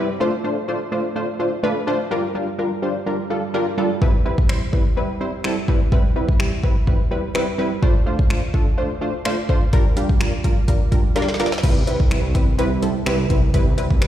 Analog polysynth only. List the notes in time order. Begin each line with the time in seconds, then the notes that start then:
0.20 A3 D4 F4 C5
0.44 A3 D4 F4 C5
0.68 A3 D4 F4 C5
0.92 A3 D4 F4 C5
1.16 A3 D4 F4 C5
1.39 A3 D4 F4 C5
1.63 A3 D4 F4 B4
1.87 A3 D4 F4 C5
2.11 G3 D4 F4 A#4
2.35 G3 D4 F4 A#4
2.58 G3 D4 F4 A#4
2.82 G3 D4 F4 C5
3.06 G3 D4 F4 A#4
3.30 G3 D4 F4 A4
3.54 G3 D4 F4 A#4
3.78 G3 D4 F4 A4
4.02 G3 C4 E4 B4
4.25 G3 C4 E4 B4
4.49 G3 C4 E4 C5
4.73 G3 C4 E4 B4
4.97 G3 C4 E4 B4
5.20 G3 C4 E4 C5
5.44 G3 C4 E4 A4
5.68 G3 C4 E4 B4
5.92 G3 C4 E4 B4
6.16 G3 C4 E4 B4
6.39 G3 C4 E4 G4
6.63 G3 C4 E4 B4
6.87 G3 C4 E4 B4
7.11 G3 C4 E4 B4
7.35 G3 C4 E4 B4
7.58 G3 C4 E4 B4
7.82 A3 D4 F4 C5
8.06 A3 D4 F4 C5
8.30 A3 D4 F4 C5
8.54 A3 D4 F4 A4
8.77 A3 D4 F4 C5
9.01 A3 D4 F4 C5
9.25 A3 D4 F4 C5
9.49 A3 D4 F4 C5
9.73 G3 D4 F4 A#4
9.96 G3 D4 F4 G4
10.20 G3 D4 F4 A#4
10.44 G3 D4 F4 A#4
10.68 G3 D4 F4 A#4
10.92 G3 D4 F4 A#4
11.16 G3 D4 F4 A#4
11.39 G3 D4 F4 A#4
11.63 G3 C4 E4 B4
11.87 G3 C4 E4 B4
12.11 G3 C4 E4 B4
12.35 G3 C4 E4 B4
12.58 G3 C4 E4 B4
12.82 G3 C4 E4 A4
13.06 G3 C4 E4 B4
13.30 G3 C4 E4 B4
13.54 G3 C4 E4 B4
13.77 G3 C4 E4 B4
14.01 G3 C4 E4 B4